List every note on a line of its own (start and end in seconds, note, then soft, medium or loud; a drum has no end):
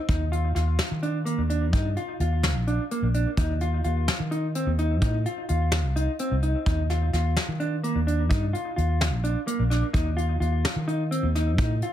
0.09 0.53 D#2 medium
0.09 0.24 D#4 medium
0.09 kick loud
0.09 closed hi-hat medium
0.32 0.47 F4 medium
0.32 closed hi-hat medium
0.55 0.78 D#2 medium
0.55 0.86 F4 medium
0.55 snare soft
0.55 closed hi-hat medium
0.79 snare loud
0.79 closed hi-hat medium
0.91 1.36 D#3 medium
1.03 1.18 D4 medium
1.03 closed hi-hat medium
1.25 1.41 A#3 medium
1.25 closed hi-hat medium
1.38 1.73 D#2 medium
1.50 1.65 D4 medium
1.50 closed hi-hat medium
1.73 1.95 G2 medium
1.73 1.88 D#4 medium
1.73 kick loud
1.73 closed hi-hat medium
1.96 2.12 F4 medium
1.96 closed hi-hat medium
2.20 2.55 D#2 medium
2.20 2.51 F4 medium
2.20 closed hi-hat medium
2.43 snare loud
2.43 closed hi-hat medium
2.55 2.77 A#1 medium
2.67 2.83 D4 medium
2.67 closed hi-hat medium
2.91 3.07 A#3 medium
2.91 closed hi-hat medium
3.02 3.25 A#1 medium
3.14 3.30 D4 medium
3.14 closed hi-hat medium
3.37 3.82 D#2 medium
3.37 3.53 D#4 medium
3.37 kick loud
3.37 closed hi-hat medium
3.61 3.77 F4 medium
3.61 closed hi-hat medium
3.84 4.07 D#2 medium
3.84 4.15 F4 medium
3.84 closed hi-hat medium
4.08 snare loud
4.08 closed hi-hat medium
4.20 4.64 D#3 medium
4.31 4.47 D#4 medium
4.31 closed hi-hat medium
4.55 4.71 C4 medium
4.55 closed hi-hat medium
4.66 5.02 D#2 medium
4.78 4.94 D#4 medium
4.78 closed hi-hat medium
5.02 5.24 A2 medium
5.02 5.17 D#4 medium
5.02 kick loud
5.02 closed hi-hat medium
5.26 5.41 F4 medium
5.26 closed hi-hat medium
5.49 5.84 D#2 medium
5.49 5.80 F4 medium
5.49 closed hi-hat medium
5.72 snare loud
5.72 closed hi-hat medium
5.84 6.06 C2 medium
5.96 6.11 D#4 medium
5.96 closed hi-hat medium
6.19 6.35 C4 medium
6.19 closed hi-hat medium
6.31 6.53 C2 medium
6.42 6.58 D#4 medium
6.42 closed hi-hat medium
6.66 7.11 D#2 medium
6.66 6.82 D#4 medium
6.66 kick loud
6.66 closed hi-hat medium
6.90 7.05 F4 medium
6.90 snare soft
6.90 closed hi-hat medium
7.13 7.35 D#2 medium
7.13 7.44 F4 medium
7.13 snare soft
7.13 closed hi-hat medium
7.37 snare medium
7.37 closed hi-hat medium
7.48 7.93 D#3 medium
7.60 7.75 D4 medium
7.60 closed hi-hat medium
7.83 7.99 A#3 medium
7.83 closed hi-hat medium
7.95 8.31 D#2 medium
8.07 8.22 D4 medium
8.07 closed hi-hat medium
8.29 8.53 G2 medium
8.29 8.45 D#4 medium
8.29 kick loud
8.29 closed hi-hat medium
8.53 8.69 F4 medium
8.53 closed hi-hat medium
8.76 9.12 D#2 medium
8.76 9.08 F4 medium
8.76 closed hi-hat medium
9.01 snare loud
9.01 closed hi-hat medium
9.12 9.35 A#1 medium
9.24 9.39 D4 medium
9.24 closed hi-hat medium
9.47 9.63 A#3 medium
9.47 closed hi-hat medium
9.59 9.81 A#1 medium
9.70 9.86 D4 medium
9.70 snare soft
9.70 closed hi-hat medium
9.93 10.39 D#2 medium
9.93 10.09 D#4 medium
9.93 kick loud
9.93 closed hi-hat medium
10.17 10.32 F4 medium
10.17 closed hi-hat medium
10.40 10.63 D#2 medium
10.40 10.71 F4 medium
10.40 closed hi-hat medium
10.65 snare loud
10.65 closed hi-hat medium
10.76 11.21 D#3 medium
10.88 11.03 D#4 medium
10.88 closed hi-hat medium
11.11 11.27 C4 medium
11.11 closed hi-hat medium
11.23 11.59 D#2 medium
11.35 11.51 D#4 medium
11.35 snare soft
11.35 closed hi-hat medium
11.58 11.81 A2 medium
11.58 11.74 D#4 medium
11.58 kick loud
11.58 closed hi-hat medium
11.82 11.93 F4 medium
11.82 closed hi-hat medium